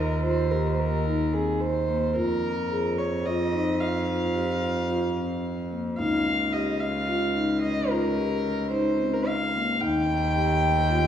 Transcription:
Already playing: D#2 A#4
0.23 F4 C5
0.51 G4 A#4
0.71 C5
0.79 A#4
1.06 D#4
1.33 C4 G#4
1.60 C5
1.88 A#3
2.15 F2 F4 A#4
2.70 G#4
2.98 C#5
3.25 F4 D#5
3.53 D#4
3.81 F5
4.35 G4
4.89 F4
5.17 C4
5.71 A#3
5.98 C#2 D#4 F5
6.53 G4 D#5
6.80 F5
7.08 F4
7.35 D#4
7.62 D#5
7.89 F4 A#4
8.17 G4
8.71 D#4 C5
9.14 A#4
9.27 F5
9.53 A#3
9.80 D#2 D#4 G5
10.35 G4
10.90 F4

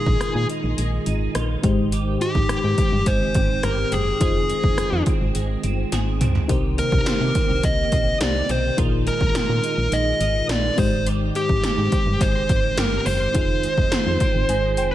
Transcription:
Already playing: A#2 D#3 G#3 D#4 F4 G#4 A#4
0.06 A#1, kick
0.21 F4, cross-stick, closed hi-hat
0.35 A#2
0.49 D#4, closed hi-hat
0.64 A#1
0.78 A#1 G#3, closed hi-hat
1.06 G#1 D#4, closed hi-hat
1.35 A#1 F4, cross-stick, closed hi-hat
1.63 G#1 G#2 D#3 G#3 D#4 G4 C5, kick, closed hi-hat
1.92 D#3 G4, closed hi-hat
2.21 G#3 G4, closed hi-hat
2.35 G#1, kick
2.49 G#2 G4, cross-stick, closed hi-hat
2.64 G#2
2.78 C4, kick, closed hi-hat
2.92 G2
3.06 G#1 G#3 C5, kick, closed hi-hat
3.34 G#1 C4, kick, closed hi-hat
3.63 G1 G4 A#4, cross-stick, closed hi-hat
3.92 F#1 C4 G#4, closed hi-hat
4.20 F1 D#3 D#4 F4 G#4 C5, kick, closed hi-hat
4.49 G#3, closed hi-hat
4.64 F1, kick
4.78 F2 G#4, cross-stick, closed hi-hat
4.92 F2
5.06 C4, kick, closed hi-hat
5.21 G#1
5.35 G#1 G#3, closed hi-hat
5.63 G1 C4, closed hi-hat
5.92 G#1 G#4, snare, closed hi-hat
6.21 C#2 C4, closed hi-hat, mid tom
6.35 floor tom
6.48 C2 C3 D#3 D#4 G4 A#4 C5, kick, closed hi-hat
6.78 A#3 A#4, closed hi-hat
6.92 C2, kick
7.06 C3 F4, snare, closed hi-hat
7.21 C3 G4
7.35 C4, kick, closed hi-hat
7.49 C2
7.63 C2 A#3 D#5, kick, closed hi-hat
7.92 A#1 C4, kick, closed hi-hat
8.20 C2 D#4 F4 G4 A#4 C5 D5, snare, closed hi-hat
8.35 G4
8.49 B1 C4 C5, closed hi-hat
8.77 A#1 A#2 D#3 D#4 F4 G#4 A#4, kick, closed hi-hat
9.06 G#3 A#4, closed hi-hat
9.21 A#1, kick
9.35 A#2 F4, snare, closed hi-hat
9.49 A#2
9.64 D#4, closed hi-hat
9.78 A#1
9.92 A#1 G#3 D#5, closed hi-hat
10.20 G#1 D#4, closed hi-hat
10.49 A#1 F4 D5, snare, closed hi-hat
10.77 G#1 G#2 D#3 G#3 D#4 G4 C5, kick, open hi-hat
11.06 D#3 G4, closed hi-hat
11.35 G#3 G4, closed hi-hat
11.49 G#1, kick
11.63 G#2 G4, snare, closed hi-hat
11.78 G#2
11.92 C4, kick, closed hi-hat
12.06 G2
12.21 G#1 G#3 C5, kick, closed hi-hat
12.49 G#1 C4, kick, closed hi-hat
12.77 G1 G4 A#4, snare, closed hi-hat
13.06 F#1 C4 C5, open hi-hat
13.34 F1 D#3 D#4 F4 G#4 C5, kick, closed hi-hat
13.63 G#3, closed hi-hat
13.78 F1, kick
13.92 F2 F4, snare, closed hi-hat
14.06 F2
14.20 C4 C6, kick, closed hi-hat
14.35 G#1
14.49 G#1 G#3 G#5, closed hi-hat
14.77 F1 C4 G5, closed hi-hat

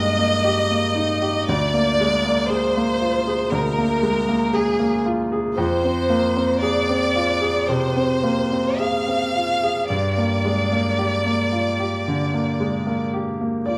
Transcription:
Already playing: G2 G#3 A#3 D#4 G4 D#5
0.18 A#3
0.45 G4
0.71 A#3
0.95 D#4
1.21 G4
1.47 D2 D5
1.74 A#3
2.00 G#3
2.26 A#3
2.49 G#4 C5
2.77 A#3
3.02 F4
3.27 G#4
3.52 D2 A#4
3.78 A#3
4.03 G#3
4.29 A#3
4.53 G#4
4.79 A#3
5.06 F4
5.32 G#4
5.56 F2 C5
5.84 C4
6.10 A#3
6.36 C4
6.62 G#4 D5
6.89 C4
7.16 F4
7.42 G#4
7.69 C3 C5
7.96 C4
8.24 A#3
8.52 C4
8.79 G#4 F5
9.08 C4
9.36 F4
9.63 G#4
9.87 G2 D5
10.18 A#3
10.45 G#3
10.72 A#3
10.98 G4
11.26 A#3
11.53 F4
11.80 G4
12.08 D3
12.34 A#3
12.60 G#3
12.87 A#3
13.13 G4
13.41 A#3
13.66 F4 D5

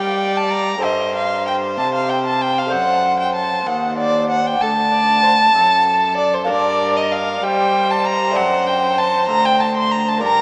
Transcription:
Already playing: G3 A#3 D4 G4 D5 G5
0.37 A5
0.51 A#5
0.78 G2 A3 C4 A4 C5
0.83 G2 D#5
1.16 F5
1.47 G5
1.77 C3 A5
1.95 F5
2.09 G5
2.26 A5
2.41 G5
2.58 F5
2.67 A3 D4 C5
2.71 F#2 F#5
3.20 G5
3.35 A5
3.66 D#2 F#5
3.98 D5
4.31 F#5
4.46 G5
4.61 D2 A4 A5
4.92 D5
5.23 C5
5.54 F#2 A4
6.17 D5
6.34 C5
6.44 A#3 D4 A#4 D5
6.48 G2
6.96 D#5
7.12 F5
7.42 G3 C5 G5
7.91 A5
8.05 A#5
8.31 A3 D4 D5
8.35 F#2 F#5
8.67 G5
8.98 A5
9.29 D2 A#5
9.45 G5
9.60 A5
9.77 C6
9.91 A#5
10.08 A5
10.18 A#3 D4 D5
10.22 G2 A#4 A#5

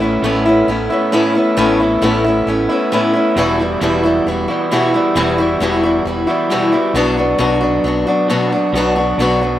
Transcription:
Already playing: A1 A2 A3
0.00 B3 C#4 E4
0.22 A1 A2 A3 B3 C#4 E4
0.45 B3 C#4 E4
0.67 A1 A3 B3 C#4 E4
0.90 B3 C#4 E4
1.12 A2 A3 B3 C#4 E4
1.35 B3 C#4 E4
1.57 A1 A2 A3 B3 C#4 E4
1.80 B3 C#4 E4
2.02 A1 A2 A3 B3 C#4 E4
2.24 B3 C#4 E4
2.46 A1 A3 B3 C#4 E4
2.69 B3 C#4 E4
2.92 A2 A3 B3 C#4 E4
3.13 B3 C#4 E4
3.36 E1 E2 B2 E3 G3 B3 E4 F#4
3.59 E3 G3 B3 E4 F#4
3.81 E1 E2 B2 E3 G3 B3 E4 F#4
4.03 E3 G3 E4 F#4
4.26 E1 E3 G3 E4 F#4
4.48 E3 G3 B3 E4 F#4
4.71 E2 B2 E3 G3 B3 E4 F#4
4.94 E3 G3 B3 E4 F#4
5.15 E1 E2 B2 E3 G3 B3 E4 F#4
5.38 E3 G3 B3 E4 F#4
5.60 E1 E2 B2 E3 G3 B3 E4 F#4
5.83 E3 G3 E4 F#4
6.04 E1 E3 G3 E4
6.09 F#4
6.27 E3 G3 B3 E4 F#4
6.50 E2 B2 E3 G3 B3 E4 F#4
6.72 E3 G3 B3 E4 F#4
6.94 B1 B2 F#3 B3 D4 F#4
7.17 B3 D4 F#4
7.38 B1 B2 F#3 B3 D4 F#4
7.61 B3 D4 F#4
7.84 B1 F#3 B3 D4 F#4
8.07 B3 D4 F#4
8.30 B2 F#3 B3 D4 F#4
8.52 B3 D4 F#4
8.73 B1 B2 F#3 B3
8.77 D4 F#4
8.96 B3 D4 F#4
9.18 B1 B2 F#3 B3 D4
9.22 F#4
9.41 B3 D4 F#4

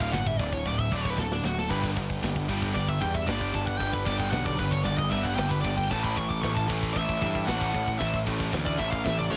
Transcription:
Already playing: D1 D2 A2 D3
0.00 F5, kick
0.12 G1 D2 A2 F#5, kick, snare, crash
0.26 E5, kick
0.39 D1 D2 A2 D5, kick, crash
0.53 C#5, kick
0.65 D1 D2 A2 D5, kick, crash
0.79 E5, kick
0.91 D1 D2 A2 D3 D5, kick, crash
1.01 C#5, kick
1.10 B4
1.18 D1 D2 A2 A4, kick, snare
1.32 D4, snare
1.43 D1 D2 A2 F#4, snare
1.59 A4, snare
1.69 G1 G2 D3 G3 B3 D4 G4 B4, kick, crash
1.84 kick
1.96 G2 D3, kick, crash
2.10 kick
2.22 G1 G2 D3, kick, snare, crash
2.36 kick
2.49 G2 D3 G3 B3 D4 G4, kick, crash
2.62 kick
2.75 G1 G2 D3 D5, kick, crash
2.88 E5, kick
3.00 E2 G2 D3 G5, kick, crash
3.14 E5, kick
3.27 G1 G2 D3 G3 B3 D4 G4 D5, kick, snare, crash
3.41 kick
3.53 G1 G2 D3 A5, kick, crash
3.67 F#5, kick
3.78 G1 G2 D3 G3 B3 D4 G4 G5, kick, crash
3.92 B4, kick
4.05 G1 G2 D3 G3 D5, kick, crash
4.18 G5, kick
4.31 B1 G2 D3 F#5, kick, snare, crash
4.45 D5, kick
4.58 G1 G2 D3 G3 B3 D4 G4 B4, kick, crash
4.71 C#5, kick
4.84 G1 G2 D3 D5, kick, crash
4.98 D#5, kick
5.10 G1 G2 D3 G3 E5, kick, crash
5.23 F#5, kick
5.36 G1 G2 D3 G3 B3 D4 G4 G5, kick, snare, crash
5.48 B4, kick
5.61 G1 G2 D3 D5, kick, crash
5.77 G5, kick
5.89 A1 A2 E3 A3 C#4 E4 A4 A5, kick, crash
6.04 B5, kick
6.16 A2 E3 C#6, kick, crash
6.29 D6, kick
6.42 A1 A2 E3 C#6, kick, snare, crash
6.54 A5, kick
6.68 A2 E3 A3 C#4 E4 A4, kick, crash
6.83 kick
6.93 A1 A2 E3 E5, kick, crash
7.09 kick
7.22 G2 A2 E3, kick, crash
7.35 kick
7.47 A1 A2 E3 A3 C#4 E4 A4 F#5, kick, snare, crash
7.61 kick
7.73 A1 A2 E3, kick, crash
7.88 kick
7.99 A1 A2 E3 A3 C#4 E4 A4 E5, kick, crash
8.14 kick
8.26 A1 A2 E3 A3, kick, crash
8.40 kick
8.52 D2 A2 E3, kick, snare, crash
8.65 D5, kick
8.78 A1 A2 E3 A3 C#4 E4 A4 E5, kick, crash
8.90 F5, kick
9.04 A1 A2 E3 E5, kick, snare
9.18 D5, high tom
9.30 A1 A2 E3 A3 C#5

